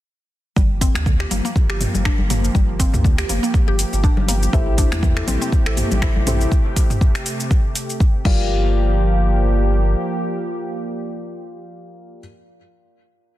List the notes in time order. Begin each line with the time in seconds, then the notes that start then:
0.56 G1 F3 G3 A#3 G4, kick, shaker
0.81 C4, kick, open hi-hat, muted conga, shaker
0.95 D2, finger snap, high conga, shaker
1.06 D3, kick, shaker
1.20 G4, finger snap, muted conga
1.31 G1 A#3, open hi-hat, high conga, low conga, shaker
1.45 A#3, shaker
1.56 kick, muted conga, shaker
1.70 G1 G4, finger snap
1.81 mid tom, open hi-hat, high conga, shaker
1.94 G1, muted conga, low conga, shaker
2.05 D4, finger snap, kick, shaker
2.18 G1, low conga
2.30 A#3, mid tom, open hi-hat, muted conga, high conga, shaker
2.44 shaker
2.55 G1 G3, kick, shaker
2.79 C4, kick, open hi-hat, muted conga, shaker
2.94 D2, mid tom, high conga, shaker
3.04 D3, kick, shaker
3.18 G4, finger snap, open hi-hat, muted conga
3.29 G1 A#3, open hi-hat, high conga, shaker
3.43 A#3, shaker
3.54 kick, muted conga, shaker
3.68 G1 G4, high conga
3.79 open hi-hat, shaker
3.93 G1, muted conga, shaker
4.04 D4, kick, shaker
4.17 G1, low conga
4.28 A#3, open hi-hat, muted conga, high conga, shaker
4.43 shaker
4.53 A1 C3 A3 E4 G4 A4 C5 E5, kick, shaker
4.77 D4, kick, open hi-hat, muted conga, shaker
4.92 E2, finger snap, high conga, shaker
5.03 E3, kick, shaker
5.16 A4, finger snap, muted conga
5.27 A1 C4, open hi-hat, high conga, low conga, shaker
5.41 C4, shaker
5.52 kick, muted conga, shaker
5.66 A1 A4, finger snap
5.77 mid tom, open hi-hat, high conga, shaker
5.91 A1, muted conga, low conga, shaker
6.02 E4 G4 A4 C5 E5, finger snap, kick, shaker
6.16 A1, low conga
6.27 C4 E4 G4 A4 C5 E5, mid tom, open hi-hat, muted conga, high conga, shaker
6.41 shaker
6.52 kick, shaker
6.76 kick, open hi-hat, shaker
6.90 mid tom, shaker
7.01 kick, shaker
7.15 finger snap, open hi-hat
7.26 open hi-hat, shaker
7.40 shaker
7.51 kick, shaker
7.75 open hi-hat, shaker
7.90 shaker
8.00 kick, shaker
8.25 G1 F3 G3 A#3 F4 G4 A#4 D5 F5, kick, crash